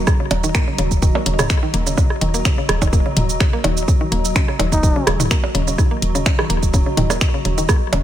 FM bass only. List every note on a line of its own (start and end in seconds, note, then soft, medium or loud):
0.31 0.51 D#1 loud
0.78 0.89 D#1 medium
0.91 1.11 D#1 medium
1.26 1.47 D#1 medium
1.74 1.94 D#1 loud
2.21 2.42 D#1 medium
2.69 2.80 D#1 medium
2.82 3.02 D#1 medium
3.17 3.37 D#1 medium
3.64 3.85 D#1 loud
4.12 4.32 D#1 loud
4.59 4.70 D#1 medium
4.72 4.92 D#1 medium
5.07 5.27 D#1 medium
5.55 5.75 D#1 loud
6.02 6.23 D#1 loud
6.50 6.61 D#1 medium
6.63 6.83 D#1 medium
6.97 7.18 D#1 medium
7.45 7.66 D#1 loud
7.93 8.03 D#1 loud